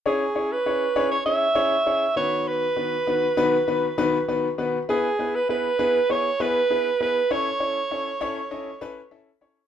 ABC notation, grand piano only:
X:1
M:4/4
L:1/8
Q:1/4=99
K:C#m
V:1 name="Grand piano"
[CEGc] [CEGc] [CEGc] [CEGc] [CEGc] [CEGc] [CEGc] [D,B,CDFB]- | [D,B,CDFB] [D,B,DFB] [D,B,DFB] [D,B,DFB] [D,B,DFB] [D,B,DFB] [D,B,DFB] [D,B,DFB] | [B,EGB] [B,EGB] [B,EGB] [B,EGB] [B,EGc] [B,EGB] [B,EGB] [B,EGB] | [CEAc] [CEAc] [CEAc] [CEAc] [CEAd] [CEAB] [CEAe] [CEAc] |]